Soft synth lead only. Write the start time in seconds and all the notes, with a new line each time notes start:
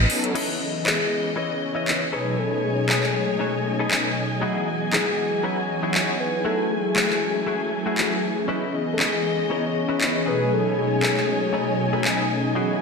0.87 G#4
1.38 C#5
2.13 B4
2.39 A4
2.64 G#4
4.93 G#4
5.44 C#5
6.20 B4
6.45 A4
6.71 G#4
8.93 A4
9.00 G#4
9.51 C#5
10.28 B4
10.53 A4
10.78 G#4